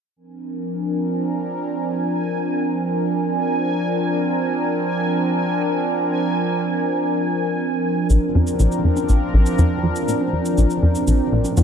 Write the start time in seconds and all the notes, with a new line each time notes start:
0.16 F3 C4 D4 A#4 G#5
8.10 A#1 F3 C4 D4 A#4 G5, cabasa
8.35 F2, high conga
8.47 cabasa
8.60 A#1, cabasa
8.72 cabasa
8.84 F2
8.97 high conga, cabasa
9.09 A#1, cabasa
9.34 A#1
9.46 cabasa
9.59 F2, high conga, cabasa
9.83 F2
9.96 cabasa
10.08 A#2, cabasa
10.21 high conga
10.33 F2
10.46 cabasa
10.58 A#1, cabasa
10.70 cabasa
10.82 F2, high conga
10.95 cabasa
11.08 A#1, cabasa
11.32 A#1
11.45 high conga, cabasa
11.57 F2, cabasa